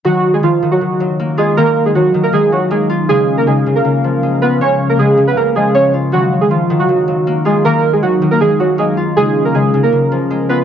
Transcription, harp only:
X:1
M:4/4
L:1/8
Q:1/4=158
K:Ebm
V:1 name="Harp" clef=bass
E,2 E, E, E, G, B, F | E,2 E, E, E, G, B, F | D,2 D, D, D, F, A, F | D,2 D, D, D, F, A, F |
E,2 E, E, E, G, B, F | E,2 E, E, E, G, B, F | D,2 D, D, D, F, A, F |]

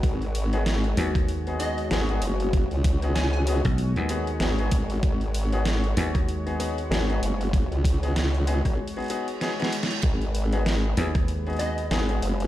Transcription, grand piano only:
X:1
M:4/4
L:1/16
Q:"Swing 16ths" 1/4=96
K:G#m
V:1 name="Grand piano"
z3 [B,DFG] z2 [B,DFG] z2 [B,DFG] [B,DFG] z [B,DFG] [B,DFG] z2 | z3 [B,DFG] z2 [B,DFG] z2 [B,DFG] [B,DFG] z [B,DFG] [B,DFG] z2 | z3 [B,DFG] z2 [B,DFG] z2 [B,DFG] [B,DFG] z [B,DFG] [B,DFG] z2 | z3 [B,DFG] z2 [B,DFG] z2 [B,DFG] [B,DFG] z [B,DFG] [B,DFG] z2 |
z3 [B,DFG] z2 [B,DFG] z2 [B,DFG] [B,DFG] z [B,DFG] [B,DFG] z2 |]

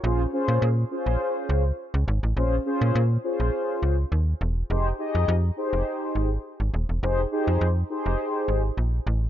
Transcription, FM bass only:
X:1
M:4/4
L:1/16
Q:1/4=103
K:Bbdor
V:1 name="FM bass" clef=bass
B,,,2 z B,, B,,2 z B,,, z2 D,,2 z D,, A,,, =A,,, | B,,,2 z B,, B,,2 z B,,, z2 D,,2 E,,2 =E,,,2 | F,,,2 z F,, F,,2 z F,,, z2 A,,,2 z A,,, E,,, =E,,, | F,,,2 z F,, F,,2 z F,,, z2 A,,,2 B,,,2 =A,,,2 |]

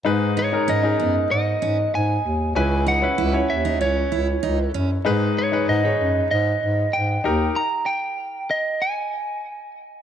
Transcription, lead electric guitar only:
X:1
M:4/4
L:1/8
Q:1/4=96
K:G#m
V:1 name="Lead electric guitar"
z c d2 d2 g2 | g f2 e c3 z | z c d2 d2 =g2 | a =g2 d ^g3 z |]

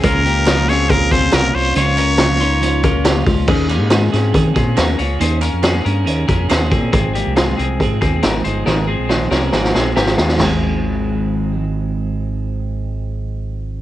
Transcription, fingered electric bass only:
X:1
M:4/4
L:1/16
Q:1/4=139
K:Ab
V:1 name="Fingered electric bass" clef=bass
D,,12 C,,2 C,,2 | D,,12- D,,2 D,,2 | E,,3 A,,3 A,,2 E,2 B,,2 E,,2 D,,2 | E,,3 F,,3 G,,2 E,,2 F,,2 E,,2 B,,2 |
A,,,3 C,,3 C,,2 A,,2 E,,2 A,,,2 G,,,2 | A,,,3 B,,,3 C,,2 A,,,2 B,,,2 A,,,2 E,,2 | A,,,16- | A,,,16 |]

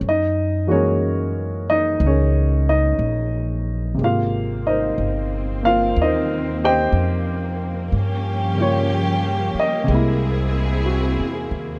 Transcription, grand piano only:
X:1
M:4/4
L:1/8
Q:"Swing" 1/4=61
K:Ab
V:1 name="Grand piano"
[Ee] [DABd]2 [Ee] [DABd] [Ee] z2 | [Ff] [EBce]2 [Ff] [EBce] [Gceg] z2 | z d2 e3 _G ^G |]
V:2 name="Grand piano"
z [_F,A,B,_G]6- [F,A,B,G] | [C,A,B,G]3 [B,CB]4- [B,CB] | z [D,G,B,F]3 [C,^G,B,=E]4 |]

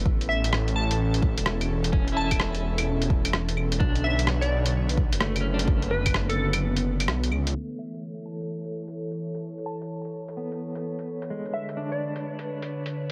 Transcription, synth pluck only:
X:1
M:4/4
L:1/16
Q:"Swing 16ths" 1/4=128
K:A
V:1 name="Synth pluck"
z2 e2 z2 a2 z8 | z2 a3 z8 z3 | z2 e2 z d2 z8 z | z2 B2 z A A z8 z |
z2 e2 z2 a2 z8 | z2 a3 z8 z3 | z2 e2 z d2 z8 z |]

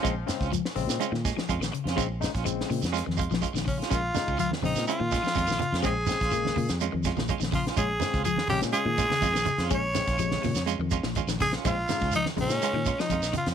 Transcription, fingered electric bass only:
X:1
M:4/4
L:1/16
Q:1/4=124
K:Bbm
V:1 name="Fingered electric bass" clef=bass
B,,,2 z D,,2 z B,,, B,, z B,,2 z F,, B,,, z F,, | B,,,3 B,,,3 B,, F,,2 F,,2 B,,, z B,,,3 | B,,,2 z D,,2 z B,,, B,, z B,,2 z F,, B,,, z F,, | B,,,3 B,,,3 B,, F,,2 F,,2 B,,, z B,,,3 |
B,,,2 z D,,2 z B,,, B,, z B,,2 z F,, B,,, z F,, | B,,,3 B,,,3 B,, F,,2 F,,2 B,,, z B,,,3 | B,,,2 z D,,2 z B,,, B,, z B,,2 z F,, B,,, z F,, |]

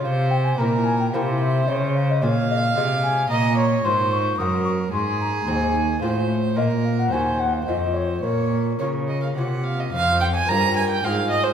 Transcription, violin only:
X:1
M:3/4
L:1/16
Q:1/4=110
K:Dblyd
V:1 name="Violin"
c4 B4 c4- | c4 f8 | [K:Bbm] e2 d2 c4 B4 | A8 c4 |
B4 c4 c4 | d4 d2 e f g2 f e | [K:Fm] f2 g a b2 a g f2 e c |]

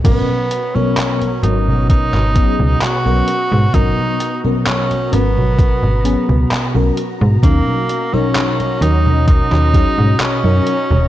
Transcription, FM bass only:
X:1
M:4/4
L:1/16
Q:1/4=65
K:G#m
V:1 name="FM bass" clef=bass
G,,, z4 z G,,,3 G,,, z C,, z B,,, z G,, | G,,, z4 z G,,,3 G,,, z C,, z B,,, z G,, | D,, z4 z D,,3 D,, z G,, z F,, z D,,, |]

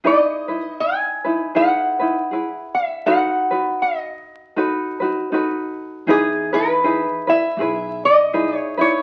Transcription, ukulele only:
X:1
M:4/4
L:1/8
Q:"Swing" 1/4=80
K:E
V:1 name="Ukulele"
[DEGB] [DEB]2 [DEB] [DEGB] [DEB] [EGB]2 | [DFAB] [DFB]3 [DFAB] [DFB] [DFAB]2 | [DEGB] [DEB] [DEGB] [EB] [EGB]2 [DEGB] [DEB] |]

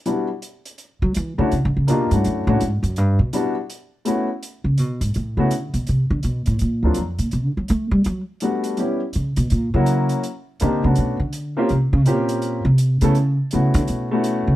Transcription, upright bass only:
X:1
M:4/4
L:1/8
Q:"Swing" 1/4=165
K:D
V:1 name="Upright bass" clef=bass
z4 z F, E, D, | (3C, D, C, B,, G,, F,, A,, ^G,, F,, | G,, B,, z6 | z C, B,, ^G,, A,, C, D, B,, |
=C, D, B,, A,, ^A,, D,, ^E,, A,, | (3B,, D, F, A, G, F, z3 | z2 C, B,, ^A,, C,2 z | z2 D, C, B,, D,2 z |
=C, _D, _B,,3 C,2 D,- | _D, z C, =D, B,,3 C, |]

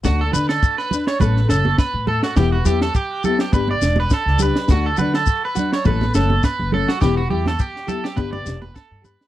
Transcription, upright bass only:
X:1
M:4/4
L:1/16
Q:"Swing 16ths" 1/4=103
K:D
V:1 name="Upright bass" clef=bass
D,,2 D,2 z4 A,,,2 F,,,2 z A,,2 z | E,,,2 E,,2 z4 G,,,2 E,,,2 z C,,2 z | D,,2 D,2 z4 A,,,2 F,,,2 z F,,,2 z | E,,,2 E,,2 z4 G,,,2 E,,,2 z G,,2 z |]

